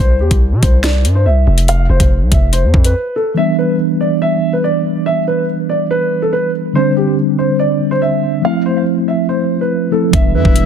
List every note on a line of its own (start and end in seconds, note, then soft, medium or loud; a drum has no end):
0.00 0.22 C2 loud
0.00 0.16 C5 medium
0.20 0.30 E2 loud
0.20 0.37 G4 medium
0.31 0.54 C2 loud
0.31 kick loud
0.31 closed hi-hat medium
0.52 0.62 C3 loud
0.63 1.06 C2 loud
0.63 0.79 C5 medium
0.63 kick loud
0.63 closed hi-hat medium
0.83 1.13 D5 medium
0.83 finger snap medium
0.83 cross-stick medium
0.83 snare loud
0.83 closed hi-hat medium
1.05 1.27 G2 loud
1.05 closed hi-hat medium
1.15 1.24 C5 medium
1.26 1.46 C2 loud
1.26 1.66 E5 medium
1.47 1.88 F1 loud
1.58 closed hi-hat medium
1.68 1.85 F5 medium
1.68 closed hi-hat medium
1.89 2.00 F1 loud
1.89 2.06 C5 medium
2.00 2.23 F1 loud
2.00 kick medium
2.00 closed hi-hat medium
2.21 2.31 C2 loud
2.32 2.65 F1 loud
2.32 2.48 E5 medium
2.32 kick loud
2.32 closed hi-hat medium
2.53 2.83 C5 medium
2.53 closed hi-hat medium
2.63 2.73 F2 loud
2.74 2.94 F2 loud
2.74 kick loud
2.84 3.15 B4 medium
2.84 closed hi-hat medium
3.16 3.32 A4 medium
3.34 6.70 E3 medium
3.34 6.70 G3 medium
3.34 6.71 B3 medium
3.34 3.54 E5 medium
3.38 6.72 D4 medium
3.59 3.75 B4 medium
4.01 4.17 D5 medium
4.22 4.52 E5 medium
4.53 4.61 B4 medium
4.64 5.04 D5 medium
5.06 5.23 E5 medium
5.28 5.44 B4 medium
5.69 5.86 D5 medium
5.91 6.21 B4 medium
6.22 6.31 A4 medium
6.33 6.49 B4 medium
6.73 8.40 D3 medium
6.73 8.40 G3 medium
6.73 8.41 C4 medium
6.73 6.92 C5 medium
6.77 8.42 D4 medium
6.97 7.13 G4 medium
7.39 7.55 C5 medium
7.59 7.89 D5 medium
7.91 7.99 C5 medium
8.02 8.42 E5 medium
8.42 9.88 F3 medium
8.42 9.89 A3 medium
8.42 9.89 C4 medium
8.42 8.61 F5 medium
8.46 9.90 E4 medium
8.66 8.82 C5 medium
9.08 9.24 E5 medium
9.29 9.59 C5 medium
9.61 9.91 B4 medium
9.91 10.13 F3 medium
9.91 10.13 A3 soft
9.91 10.13 C4 soft
9.91 10.14 E4 medium
9.91 10.09 A4 medium
10.10 10.36 E1 loud
10.10 10.66 D3 medium
10.10 10.66 E3 medium
10.10 10.66 G3 medium
10.10 10.66 B3 medium
10.10 10.66 E4 medium
10.10 10.66 B4 medium
10.10 10.30 E5 medium
10.10 kick loud
10.10 closed hi-hat medium
10.15 10.66 D4 medium
10.34 10.44 G2 loud
10.34 10.51 B4 medium
10.34 10.66 E5 medium
10.45 10.66 E1 loud
10.45 kick loud
10.56 closed hi-hat medium